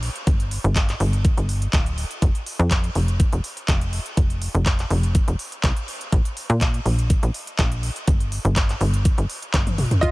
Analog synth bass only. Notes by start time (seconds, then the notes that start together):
0.27 G1
0.64 G1
1.00 G1
1.37 G1
1.73 D1
2.22 F1
2.59 F2
2.95 F1
3.33 F1
3.68 F1
4.17 F1
4.55 F1
4.90 F1
5.28 F1
5.64 C2
6.12 A#1
6.50 A#2
6.86 A#1
7.23 A#1
7.59 A#1
8.08 G1
8.45 G1
8.81 G1
9.18 G1
9.54 G1
10.03 F1